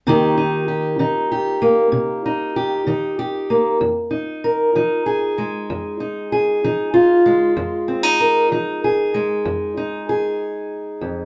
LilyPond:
\new Staff \with { instrumentName = "Steel-string acoustic guitar" } { \time 12/8 \key c \minor \tempo 4. = 64 << { <ees bes ees' g'>8 ees'8 g'8 ees'8 g'8 bes4 ees'8 g'8 ees'8 g'8 bes8 | r8 ees'8 bes'8 ees'8 aes'8 aes4 ees'8 aes'8 ees'8 f'8 aes8~ | aes8 c'16 ees'16 bes'8 ees'8 aes'8 aes4 ees'8 aes'2 | } \\ { c4 r8 ees4 r8 c4 r8 ees4 r8 | f,4 r8 f4 r8 f,4 r8 f4 r8 | f,4 r8 f4 r8 f,4 r4. f,8 | } >> }